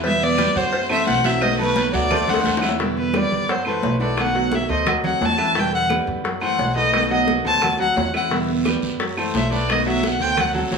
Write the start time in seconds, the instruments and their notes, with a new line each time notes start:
Already playing: upright bass E2
0.04 steel-string acoustic guitar B2 D3 G3 B3 E4, grand piano E3 E4 E5, nylon-string guitar B3, violin E5, cowbell, high conga, long guiro
0.22 nylon-string guitar B3, violin D5, high conga
0.38 steel-string acoustic guitar D3 G3 B3 E4, grand piano G3 G4 B4, cowbell, high conga, short guiro, claves
0.55 upright bass F#2, nylon-string guitar A3, grand piano F#4 F#5, violin C5, short guiro
0.73 muted steel-string acoustic guitar stroke, cowbell, high conga, long guiro
0.89 steel-string acoustic guitar E3 A3 E4 F#4, grand piano A3 A4 C5, nylon-string guitar C4, violin E5, high conga, claves
1.07 upright bass B1, steel-string acoustic guitar E3 A3 E4 F#4, nylon-string guitar C4, violin F#5, cowbell, high conga, short guiro
1.24 steel-string acoustic guitar E3 A3 E4 F#4, grand piano F#3 F#4 F#5, nylon-string guitar C4, violin E5, cowbell, high conga, short guiro
1.41 steel-string acoustic guitar B2 D#3 A3 B3 F#4, nylon-string guitar B3, violin D#5, cowbell, long guiro, claves
1.58 nylon-string guitar F#3, grand piano A3 A4 B4, violin B4, high conga
1.76 steel-string acoustic guitar D#3 A3 B3 F#4, cowbell, high conga, short guiro
1.93 upright bass D2, grand piano F#3 F#4 F#5, nylon-string guitar A3, violin D5, short guiro
2.10 grand piano A3 A4 C5, muted steel-string acoustic guitar stroke, cowbell, high bongo, high conga, low conga, long guiro, claves
2.27 upright bass D2, grand piano A3 A4 C5, steel-string acoustic guitar A3 C4 F#4, nylon-string guitar D4, violin F#5, high conga, low conga
2.34 high bongo
2.44 upright bass E2, steel-string acoustic guitar D3 A3 C4 F#4, cowbell, high conga, short guiro
2.57 steel-string acoustic guitar F#4, low bongo
2.62 grand piano E3 E4 E5, steel-string acoustic guitar A3 C4, high conga, short guiro, claves
2.69 low bongo
2.79 steel-string acoustic guitar B2 D3 G3 B3 E4, grand piano E3 E4 E5, high bongo
2.97 violin B4, high bongo, high conga
3.13 steel-string acoustic guitar D3 G3 B3 E4, grand piano G3 G4 B4, violin D5, high bongo, high conga, claves
3.31 upright bass F#2, high bongo, high conga
3.48 grand piano F#3 F#4 F#5, violin C5, muted steel-string acoustic guitar stroke, high bongo, high conga
3.65 steel-string acoustic guitar E3 A3 E4 F#4, grand piano A3 A4 C5, violin B4, high conga, claves
3.83 upright bass B1, steel-string acoustic guitar E3 A3 E4 F#4, high bongo, low bongo, high conga
4.00 steel-string acoustic guitar E3 A3 E4 F#4, grand piano A3 A4 B4, violin D5, high bongo
4.17 steel-string acoustic guitar B2 D#3 A3 B3 F#4, violin F#5, high bongo, claves
4.34 grand piano F#3 F#4 F#5, high bongo, high conga
4.52 steel-string acoustic guitar D#3 A3 B3 F#4, violin E5, high bongo, high conga
4.69 upright bass D2, grand piano A3 A4 C5, violin D#5, high bongo, high conga
4.86 grand piano F#3 F#4 F#5, muted steel-string acoustic guitar stroke, high bongo, high conga, low conga, claves
5.04 grand piano F#3 F#4 F#5, steel-string acoustic guitar A3 C4 F#4, violin F#5, high conga, low conga
5.21 upright bass E2, steel-string acoustic guitar D3 A3 C4 F#4, high bongo, low bongo, high conga
5.25 violin A5
5.38 grand piano E3 E4 E5, steel-string acoustic guitar A3 C4 F#4, high bongo, high conga, claves
5.55 steel-string acoustic guitar B2 D3 G3 B3 E4, grand piano E3 E4 E5, violin G5, high bongo, high conga
5.73 violin F#5, high bongo, high conga
5.89 steel-string acoustic guitar D3 G3 B3 E4, grand piano G3 G4 B4, high bongo, high conga, claves
6.07 upright bass F#2, high bongo
6.24 grand piano F#3 F#4 F#5, muted steel-string acoustic guitar stroke, high bongo, high conga
6.41 steel-string acoustic guitar E3 A3 E4 F#4, grand piano A3 A4 C5, violin F#5, high conga, claves
6.58 upright bass B1, steel-string acoustic guitar E3 A3 E4 F#4, high bongo, low bongo, high conga
6.76 steel-string acoustic guitar E3 A3 E4 F#4, grand piano A3 A4 B4, violin D#5, high bongo
6.93 steel-string acoustic guitar B2 D#3 A3 B3 F#4, high bongo, claves
7.10 grand piano F#3 F#4 F#5, violin D#5, high bongo, high conga
7.27 steel-string acoustic guitar D#3 A3 B3 F#4, high bongo, high conga
7.45 upright bass D2, grand piano A3 A4 C5, violin A5, high bongo, high conga
7.61 grand piano F#3 F#4 F#5, muted steel-string acoustic guitar stroke, high bongo, high conga, low conga, claves
7.77 grand piano F#3 F#4 F#5, steel-string acoustic guitar A3 C4 F#4, high conga
7.82 violin F#5
7.95 upright bass E2, steel-string acoustic guitar D3 A3 C4 F#4, high bongo, low bongo, high conga
8.13 grand piano E3 E4 E5, steel-string acoustic guitar A3 C4 F#4, violin F#5, high bongo, high conga, claves
8.29 steel-string acoustic guitar B2 D3 G3 B3 E4, grand piano E3 E4 E5, high bongo, high conga, long guiro
8.49 high bongo, high conga
8.65 steel-string acoustic guitar D3 G3 B3 E4, grand piano G3 G4 B4, high bongo, high conga, short guiro, claves
8.82 upright bass F#2, high bongo, short guiro
8.99 grand piano F#3 F#4 F#5, muted steel-string acoustic guitar stroke, high bongo, high conga, long guiro
9.17 steel-string acoustic guitar E3 A3 E4 F#4, grand piano A3 A4 C5, high conga, claves
9.34 upright bass B1, steel-string acoustic guitar E3 A3 E4 F#4, violin E5, high bongo, low bongo, high conga, short guiro
9.52 steel-string acoustic guitar E3 A3 E4 F#4, grand piano A3 A4 B4, violin D5, high bongo, high conga, short guiro
9.69 steel-string acoustic guitar B2 D#3 A3 B3 F#4, violin D#5, high bongo, high conga, long guiro, claves
9.86 grand piano F#3 F#4 F#5, violin E5, high bongo, high conga
10.03 steel-string acoustic guitar D#3 A3 B3 F#4, violin F#5, high bongo, high conga, short guiro
10.19 upright bass D2, grand piano A3 A4 C5, violin G5, high bongo, short guiro
10.37 grand piano F#3 F#4 F#5, violin F#5, muted steel-string acoustic guitar stroke, high bongo, high conga, low conga, long guiro, claves
10.55 grand piano F#3 F#4 F#5, steel-string acoustic guitar A3 C4 F#4, violin A4, high conga, low conga
10.71 upright bass E2, steel-string acoustic guitar D3 A3 C4 F#4, violin C5, high bongo, low bongo, high conga, short guiro